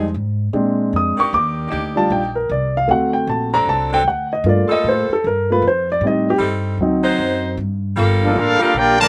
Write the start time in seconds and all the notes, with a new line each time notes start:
Already playing: F2 F3 C4 D#4 G#4
0.14 G#2
0.53 A#2 G#3 C4 D4
0.93 F2 D#6
1.17 D#3 A#3 D4 G4 C#6, muted upright bass stroke
1.33 D#2 D6
1.70 D2 A#3 D4 D#4 G4
1.95 G3 D4 F4 A5
2.10 A#1 G5
2.35 A#4
2.49 C2 D5
2.77 F5
2.88 D2 A3 C4 F#4 F#5
3.13 G5
3.27 A#1 A5
3.52 F#3 C4 D4 A4 A#5
3.65 C2 A5
3.92 F#3 C4 D4 A4 G5
4.04 D2 F#5
4.33 D#5
4.44 G2 A3 A#3 F4
4.49 D5
4.68 G3 F4 A4, muted upright bass stroke
4.72 D#5
4.84 A2
4.89 C5
5.09 A4, muted upright bass stroke
5.24 G2 A#4
5.50 A3 A#3 F4 B4
5.62 F2
5.68 C5
5.92 D5
6.01 A2 G3 C4
6.05 D#4 D#5
6.30 G4
6.38 G2 G3 C4 D#4 A4
6.78 D2 F#3 C4
6.82 D#4
7.03 F#3 D#4 C5
7.18 F#2
7.57 G2
7.96 G1 G3 A#3 F4 A4
8.23 F3 A#3 D4 F4 A4 D5
8.36 A1 A#3 D4 F4 A4 A#4 F5
8.59 G3 A#3 D4 F4 G4 A4 A#4 F5, muted upright bass stroke
8.74 A#1 A#3 D4 F4 G4 A#4 D5 G5
9.00 D3 F3 A3 F4 A#4 D5 A5